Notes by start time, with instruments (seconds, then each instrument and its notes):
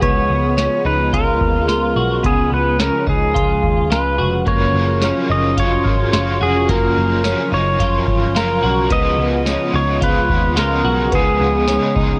Already playing: analog synth pad G#3
0.02 picked electric bass C#2, analog synth pad C#3 F3 B3 F4, clean electric guitar B3, pedal steel guitar C#5, kick, closed hi-hat
0.30 picked electric bass C#2
0.57 clean electric guitar C#4, snare, closed hi-hat, tambourine
0.85 picked electric bass C#2, clean electric guitar D#4, pedal steel guitar B4
1.13 picked electric bass C#2, clean electric guitar F4, pedal steel guitar A#4, kick, closed hi-hat
1.41 picked electric bass D#2, kick
1.68 picked electric bass C#2, clean electric guitar F4, snare, closed hi-hat, tambourine
1.96 picked electric bass B1, clean electric guitar F#4
2.23 picked electric bass C#2, clean electric guitar B3, analog synth pad C#4, pedal steel guitar G#4, kick, closed hi-hat
2.52 picked electric bass C#2, pedal steel guitar B4
2.79 clean electric guitar C#4, pedal steel guitar A#4, snare, closed hi-hat, tambourine
3.07 picked electric bass C#2, clean electric guitar D#4, pedal steel guitar G#4, kick
3.34 picked electric bass C#2, clean electric guitar F4, kick, closed hi-hat
3.64 picked electric bass D#2, kick
3.90 picked electric bass C#2, clean electric guitar F4, pedal steel guitar B4, snare, closed hi-hat, tambourine
4.18 picked electric bass F1, clean electric guitar F#4
4.45 picked electric bass F#1, overdriven electric guitar F#3 C#4 F4 A#4, analog synth pad F#3, clean electric guitar A#3, pedal steel guitar C#5, kick, closed hi-hat
4.74 picked electric bass F#1, overdriven electric guitar C#4 F4 A#4
5.02 overdriven electric guitar F#3 C#4 F4 A#4, clean electric guitar C#4, snare, closed hi-hat, tambourine
5.28 picked electric bass F#1, clean electric guitar D#4, overdriven electric guitar F4 A#4, pedal steel guitar D#5
5.56 picked electric bass F#1, overdriven electric guitar F#3 C#4 F4, clean electric guitar F4, kick, closed hi-hat
5.60 overdriven electric guitar A#4, pedal steel guitar C#5
5.84 picked electric bass G#1, overdriven electric guitar C#4 F4 A#4, kick
6.12 picked electric bass F#1, overdriven electric guitar F#3 C#4 F4 A#4, clean electric guitar F4, snare, closed hi-hat, tambourine
6.39 picked electric bass F1, overdriven electric guitar F4 A#4, clean electric guitar F#4, pedal steel guitar G#4
6.44 overdriven electric guitar C#4
6.68 picked electric bass F#1, overdriven electric guitar F#3 C#4 F4 A#4, clean electric guitar A#3, pedal steel guitar A#4, kick, closed hi-hat
6.96 picked electric bass F#1, overdriven electric guitar C#4 F4 A#4
7.24 overdriven electric guitar F#3 C#4 F4 A#4, clean electric guitar C#4, snare, closed hi-hat, tambourine
7.51 picked electric bass F#1, overdriven electric guitar C#4 F4 A#4, clean electric guitar D#4, pedal steel guitar C#5
7.79 picked electric bass F#1, overdriven electric guitar F#3 C#4 F4 A#4, clean electric guitar F4, kick, closed hi-hat
8.06 picked electric bass G#1, overdriven electric guitar C#4 F4 A#4, kick
8.34 picked electric bass F#1, overdriven electric guitar F#3 C#4 F4 A#4, clean electric guitar F4, pedal steel guitar A#4, snare, closed hi-hat, tambourine
8.62 picked electric bass B1, overdriven electric guitar C#4 F4 A#4, clean electric guitar F#4
8.90 picked electric bass C#2, overdriven electric guitar C#3 G#3 B3 F4 G#4, analog synth pad C#3 G#3 B3, clean electric guitar B3, pedal steel guitar D#5, kick, closed hi-hat
9.18 picked electric bass C#2, overdriven electric guitar B3 F4 G#4
9.46 overdriven electric guitar C#3 G#3 B3 F4 G#4, clean electric guitar C#4, snare, closed hi-hat, tambourine
9.73 picked electric bass C#2, clean electric guitar D#4, overdriven electric guitar F4 G#4, pedal steel guitar C#5
9.77 overdriven electric guitar B3
10.01 picked electric bass C#2, overdriven electric guitar G#3 B3 F4 G#4, clean electric guitar F4, pedal steel guitar B4, kick, closed hi-hat
10.29 picked electric bass D#2, overdriven electric guitar B3 F4 G#4, kick
10.56 picked electric bass C#2, overdriven electric guitar C#3 G#3 B3 F4 G#4, clean electric guitar F4, pedal steel guitar A#4, snare, closed hi-hat, tambourine
10.84 picked electric bass B1, overdriven electric guitar F4 G#4, clean electric guitar F#4
11.12 picked electric bass C#2, overdriven electric guitar C#3 G#3 B3 F4 G#4, clean electric guitar B3, analog synth pad D#4, pedal steel guitar G#4, kick, closed hi-hat
11.40 picked electric bass C#2, overdriven electric guitar B3 F4 G#4
11.68 overdriven electric guitar C#3 G#3 B3 F4 G#4, clean electric guitar C#4, snare, closed hi-hat, tambourine
11.95 picked electric bass C#2, overdriven electric guitar B3 F4 G#4, clean electric guitar D#4, kick